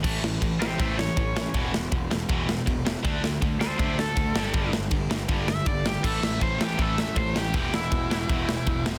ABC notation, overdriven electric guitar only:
X:1
M:4/4
L:1/8
Q:1/4=160
K:Edor
V:1 name="Overdriven electric guitar"
z3 [G=c] [ce] ^c3- | c z6 z | z3 [A=c] [ce] A3- | A z4 e d G |
A e =c G A e c G | G E6 z |]